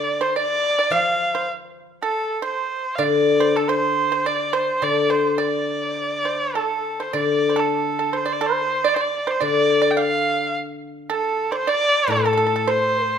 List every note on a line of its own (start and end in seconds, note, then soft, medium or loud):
0.00 0.91 D3 soft
0.00 0.18 D5 medium
0.00 0.24 D5 medium
0.21 0.34 C5 medium
0.21 0.36 C5 medium
0.36 0.75 D5 medium
0.36 0.93 D5 loud
0.79 0.91 D5 medium
0.90 2.58 F3 medium
0.90 1.30 F5 medium
0.90 1.47 F5 medium
1.35 1.47 C5 medium
2.02 2.41 A4 medium
2.42 2.95 C5 medium
2.42 2.97 C5 medium
2.95 4.68 D3 medium
2.95 3.38 D5 medium
2.95 3.04 F5 medium
3.03 3.58 D5 medium
3.40 3.54 C5 medium
3.56 3.69 A4 medium
3.68 4.28 C5 medium
3.68 4.09 C5 medium
4.12 4.25 C5 medium
4.26 4.53 D5 medium
4.26 4.55 D5 medium
4.53 4.80 C5 medium
4.53 4.85 C5 medium
4.82 6.56 D3 medium
4.82 5.09 D5 medium
4.82 5.12 D5 medium
5.10 5.37 C5 medium
5.10 5.41 C5 medium
5.38 5.81 D5 medium
5.38 6.57 D5 medium
5.81 5.92 C#5 medium
5.92 6.22 C5 medium
6.25 6.53 C5 medium
6.55 6.97 A4 medium
6.55 7.04 A4 medium
7.00 7.14 C5 medium
7.00 7.15 C5 medium
7.13 8.85 D3 soft
7.13 7.48 D5 medium
7.13 7.61 D5 medium
7.49 7.56 C5 soft
7.56 7.97 A4 medium
7.56 8.18 A4 medium
7.99 8.13 A4 medium
8.13 8.27 C5 medium
8.13 8.34 C5 medium
8.26 8.40 D5 medium
8.33 8.48 D5 medium
8.41 8.82 C5 medium
8.46 8.90 C5 medium
8.84 8.95 D5 medium
8.84 8.96 D5 medium
8.94 9.02 C5 medium
8.94 9.25 D5 medium
9.01 9.32 D5 medium
9.27 9.41 C5 medium
9.27 9.44 C5 medium
9.40 11.10 D3 medium
9.40 9.80 D5 medium
9.45 9.92 D5 loud
9.82 9.96 D5 medium
9.91 10.03 G5 medium
9.97 10.50 F5 medium
10.01 10.56 F5 medium
11.10 11.49 A4 medium
11.10 11.53 A4 medium
11.51 11.65 C5 medium
11.51 11.57 D5 medium
11.56 11.71 C5 medium
11.67 12.06 D5 medium
11.67 12.13 D5 loud
12.08 13.19 A2 medium
12.08 12.15 A4 medium
12.12 12.71 A4 medium
12.17 12.23 A4 soft
12.26 12.31 A4 medium
12.33 12.36 A4 medium
12.37 12.45 A4 medium
12.47 12.53 A4 soft
12.56 12.61 A4 medium
12.68 13.07 C5 medium
12.68 13.19 C5 medium
13.07 13.19 A4 medium